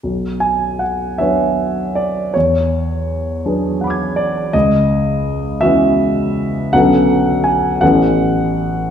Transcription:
<<
  \new Staff \with { instrumentName = "Grand piano" } { \time 6/8 \key b \dorian \tempo 4. = 55 << { r2. | r2 <fis'' b'' d''' gis'''>4 | r2. | r2. | } \\ { r8 gis''8 fis''8 e''4 d''8 | cis''2~ cis''8 d''8 | dis''4. e''4. | fis''4 gis''8 fis''4 r8 | } >> }
  \new Staff \with { instrumentName = "Grand piano" } { \time 6/8 \key b \dorian b,,4. <fis b d' cis''>4. | e,4. <fis b d' gis'>4. | cis,4. <e b cis' fis'>4. | <b,, d b cis' a'>4. <a,, e b cis' a'>4. | }
>>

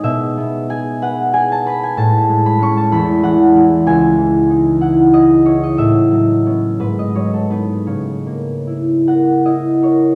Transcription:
<<
  \new Staff \with { instrumentName = "Harp" } { \time 6/8 \key cis \minor \tempo 4. = 62 <dis'' e'' gis''>4 gis''8 fis''8 gis''16 a''16 b''16 gis''16 | a''8. b''16 cis'''16 a''16 b''8 fis''4 | gis''4. fis''8 dis''8 cis''16 dis''16 | e''4. b'16 dis''16 cis''16 a'16 b'8 |
cis''4. fis''8 dis''8 cis''8 | }
  \new Staff \with { instrumentName = "Harp" } { \time 6/8 \key cis \minor <b, gis dis' gis'>8 b8 gis'8 b'8 gis'8 b'8 | a,8 gis8 <gis cis'>8 e,8 e8 <gis e'>8 | cis,8 e8 dis'8 e'8 gis'8 e'8 | a,8 fis8 <b cis'>8 gis,8 fis8 <b dis'>8 |
cis8 ais8 e'8 ais'8 e'8 ais'8 | }
>>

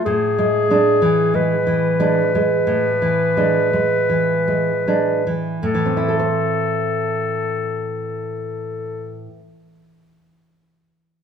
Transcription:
<<
  \new Staff \with { instrumentName = "Clarinet" } { \time 4/4 \key a \minor \tempo 4 = 43 gis'4 b'2. | a'1 | }
  \new Staff \with { instrumentName = "Nylon-string guitar" } { \clef bass \time 4/4 \key a \minor a,16 gis16 <gis d'>16 e16 gis16 e16 <gis d'>16 gis16 a,16 e16 <gis d'>16 gis16 e16 gis16 <gis d'>16 e16 | <a, e c' e' a' c''>1 | }
>>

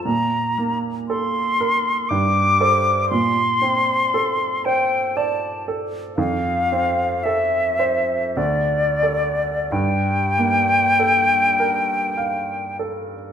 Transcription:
<<
  \new Staff \with { instrumentName = "Flute" } { \time 3/4 \key g \dorian \tempo 4 = 58 bes''8. r16 c'''4 d'''4 | c'''4. g''8 a''8 r8 | f''4 e''4 d''4 | g''2~ g''8 r8 | }
  \new Staff \with { instrumentName = "Grand piano" } { \time 3/4 \key g \dorian bes,8 bes8 a'8 bes'8 g,8 <a' c''>8 | bes,8 c'8 a'8 c''8 d''8 a'8 | f,8 c'8 a'8 c''8 d,8 <a' d''>8 | g,8 bes8 a'8 bes'8 f''8 a'8 | }
>>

